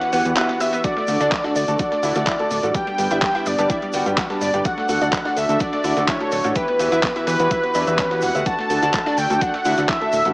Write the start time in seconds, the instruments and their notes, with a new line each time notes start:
Already playing: analog synth pad E3 E4 F#4 G4 B4, supersaw synth F#5, soft synth lead F#5
0.01 synth pluck B3, snare, closed hi-hat
0.13 analog synth bass E2, grand piano E3 B3 F#4 G4 F#5, synth pluck B3, open hi-hat, shaker
0.25 analog synth bass E2, synth pluck B3, closed hi-hat, shaker
0.36 grand piano E3 B3 F#4 G4 E5, synth pluck B3, snare, clap, closed hi-hat, shaker
0.49 synth pluck B3, snare, closed hi-hat
0.60 grand piano B3 F#4 G4 E5, synth pluck B3, soft synth lead E5, supersaw synth E5, open hi-hat, shaker
0.73 synth pluck B3, snare, closed hi-hat, shaker
0.84 grand piano D3 D4 F#4 A4 F#5, analog synth pad A3 D4, synth pluck F#4, soft synth lead D5, supersaw synth D5, kick, closed hi-hat, shaker
0.97 synth pluck A3, snare
1.07 analog synth bass D2, grand piano D3 D4 F#4 A4 F#5, synth pluck A3, open hi-hat, shaker
1.20 analog synth bass D2, grand piano D3 D4 F#4 A4 F#5, synth pluck D4, closed hi-hat, shaker
1.32 synth pluck A3, kick, snare, clap, closed hi-hat, shaker
1.44 grand piano D3 D4 F#4 A4 F#5, synth pluck D4, snare
1.55 analog synth bass D2, synth pluck A3, supersaw synth D5, soft synth lead D5, open hi-hat, shaker
1.68 analog synth bass D2, grand piano D3 D4 F#4 A4 A5, synth pluck A3, closed hi-hat, shaker
1.79 grand piano D3 D4 F#4 A4 F#5, synth pluck D4, kick, closed hi-hat, shaker
1.92 synth pluck A3, snare, closed hi-hat
2.03 analog synth bass D2, grand piano D3 D4 F#4 A4 F#5, synth pluck E4, open hi-hat, shaker
2.15 analog synth bass D2, grand piano D3 D4 F#4 A4 F#5, synth pluck A3, snare, closed hi-hat, shaker
2.27 synth pluck E4, kick, snare, clap, closed hi-hat, shaker
2.39 grand piano D3 D4 F#4 A4 A5, synth pluck A3, closed hi-hat
2.51 analog synth bass D1, synth pluck A3, open hi-hat, shaker
2.63 analog synth bass A1, grand piano G3 D4 F#4 A4 F#5, synth pluck A3, closed hi-hat, shaker
2.74 grand piano G3 D4 G4 B4 G5, analog synth pad B3 G4, synth pluck G4, supersaw synth G5, soft synth lead G5, kick, closed hi-hat, shaker
2.87 synth pluck G3, closed hi-hat
2.98 analog synth bass G1, synth pluck G3, grand piano G3 D4 G4 B4 G5, open hi-hat, shaker
3.10 analog synth bass G1, grand piano G3 D4 G4 B4 G5, synth pluck E4, closed hi-hat, shaker
3.22 synth pluck G3, supersaw synth G5, soft synth lead G5, kick, snare, clap, closed hi-hat, open hi-hat, shaker
3.35 grand piano G3 D4 G4 B4 G5, synth pluck E4, closed hi-hat
3.46 analog synth bass G1, synth pluck G3, supersaw synth D5, soft synth lead D5, open hi-hat, shaker
3.58 analog synth bass G1, grand piano G3 D4 G4 B4 A5, synth pluck G3, closed hi-hat, shaker
3.70 grand piano G3 D4 G4 B4 G5, synth pluck E4, kick, closed hi-hat, shaker
3.82 synth pluck G3, closed hi-hat
3.93 analog synth bass G1, grand piano G3 D4 G4 B4 G5, synth pluck F#4, open hi-hat, shaker
4.06 analog synth bass G1, grand piano G3 D4 G4 B4 G5, synth pluck G3, closed hi-hat, shaker
4.17 synth pluck F#4, kick, snare, clap, closed hi-hat, shaker
4.30 grand piano G3 D4 G4 B4 A5, synth pluck G3, snare, closed hi-hat
4.41 analog synth bass G1, synth pluck G3, supersaw synth D5, soft synth lead D5, open hi-hat, shaker
4.54 analog synth bass G1, grand piano D3 D4 G4 B4 G5, synth pluck G3, closed hi-hat, shaker
4.65 analog synth pad A3 F#4, grand piano D4 F#4 A4 F#5, synth pluck F#4, soft synth lead F#5, supersaw synth F#5, kick, closed hi-hat, shaker
4.78 synth pluck A3, snare
4.89 analog synth bass D2, grand piano D3 D4 F#4 A4 F#5, synth pluck A3, open hi-hat, shaker
5.01 analog synth bass D2, grand piano D3 D4 F#4 A4 F#5, synth pluck D4, closed hi-hat, shaker
5.13 synth pluck A3, kick, snare, clap, closed hi-hat, shaker
5.25 grand piano D3 D4 F#4 A4 F#5, synth pluck D4, snare
5.36 analog synth bass D2, synth pluck A3, soft synth lead E5, supersaw synth E5, open hi-hat, shaker
5.49 analog synth bass D2, grand piano D3 D4 F#4 A4 A5, synth pluck A3, closed hi-hat, shaker
5.60 grand piano D3 F#4 F#5, synth pluck D4, supersaw synth D5, soft synth lead D5, kick, closed hi-hat, shaker
5.73 synth pluck A3, snare, closed hi-hat
5.84 analog synth bass D2, grand piano D3 D4 F#4 A4 F#5, synth pluck E4, open hi-hat, shaker
5.97 analog synth bass D2, grand piano D3 D4 F#4 A4 F#5, synth pluck A3, snare, closed hi-hat, shaker
6.08 synth pluck E4, supersaw synth C#5, soft synth lead C#5, kick, snare, clap, closed hi-hat, shaker
6.20 grand piano D3 D4 F#4 A4 A5, synth pluck A3, closed hi-hat
6.32 analog synth bass D1, synth pluck A3, open hi-hat, shaker
6.44 analog synth bass A1, synth pluck A3, grand piano D4 F#4 A4 F#5, closed hi-hat, shaker
6.55 analog synth pad E3 E4 G4 B4, grand piano E3 B3 F#4 G4 E5, synth pluck G4, supersaw synth B4, soft synth lead B4, kick, closed hi-hat, shaker
6.68 synth pluck B3, closed hi-hat
6.79 analog synth bass E2, grand piano E3 B3 F#4 G4 E5, synth pluck B3, open hi-hat, shaker
6.92 analog synth bass E2, grand piano E3 B3 F#4 G4 E5, synth pluck E4, closed hi-hat, shaker
7.03 synth pluck B3, kick, snare, clap, closed hi-hat, open hi-hat, shaker
7.16 grand piano E3 B3 F#4 G4 E5, synth pluck E4, closed hi-hat
7.27 analog synth bass E2, synth pluck B3, supersaw synth B4, soft synth lead B4, snare, open hi-hat, shaker
7.39 analog synth bass E2, grand piano E3 B3 F#4 G4 F#5, synth pluck B3, closed hi-hat, shaker
7.51 grand piano E3 B3 F#4 G4 E5, synth pluck E4, kick, closed hi-hat, shaker
7.64 synth pluck B3, closed hi-hat
7.75 analog synth bass E2, grand piano E3 B3 F#4 G4 E5, synth pluck D4, open hi-hat, shaker
7.87 analog synth bass E2, grand piano E3 B3 F#4 G4 E5, synth pluck B3, closed hi-hat, shaker
7.98 synth pluck C#4, kick, snare, clap, closed hi-hat, shaker
8.11 grand piano E3 B3 F#4 G4 F#5, synth pluck B3, snare, closed hi-hat
8.21 analog synth bass E1, synth pluck B3, supersaw synth F#5, soft synth lead F#5, open hi-hat, shaker
8.35 analog synth bass D2, grand piano B3 F#4 G4 E5, synth pluck B3, closed hi-hat, shaker
8.46 grand piano D3 D4 F#4 A4 F#5, analog synth pad A3 D4, synth pluck F#4, soft synth lead A5, supersaw synth A5, kick, closed hi-hat, shaker
8.59 synth pluck A3, snare
8.70 analog synth bass D2, grand piano D3 D4 F#4 A4 F#5, synth pluck A3, open hi-hat, shaker
8.82 analog synth bass D2, grand piano D3 D4 F#4 A4 F#5, synth pluck D4, closed hi-hat, shaker
8.94 synth pluck A3, kick, snare, clap, closed hi-hat, shaker
9.06 grand piano D3 D4 F#4 A4 F#5, synth pluck D4, snare
9.18 analog synth bass D2, synth pluck A3, soft synth lead G5, supersaw synth G5, open hi-hat, shaker
9.30 analog synth bass D2, grand piano D3 D4 F#4 A4 A5, synth pluck A3, closed hi-hat, shaker
9.41 grand piano D3 D4 F#4 A4 F#5, synth pluck D4, soft synth lead F#5, supersaw synth F#5, kick, closed hi-hat, shaker
9.54 synth pluck A3, snare, closed hi-hat
9.65 analog synth bass D2, grand piano D3 D4 F#4 A4 F#5, synth pluck E4, open hi-hat, shaker
9.77 analog synth bass D2, grand piano D3 D4 F#4 A4 F#5, synth pluck A3, snare, closed hi-hat, shaker
9.88 synth pluck E4, soft synth lead E5, supersaw synth E5, kick, snare, clap, closed hi-hat, shaker
10.01 grand piano D3 D4 F#4 A4 A5, synth pluck A3, closed hi-hat
10.12 analog synth bass D1, synth pluck A3, open hi-hat, shaker
10.25 analog synth bass A1, grand piano G3 D4 F#4 A4 F#5, synth pluck A3, closed hi-hat, shaker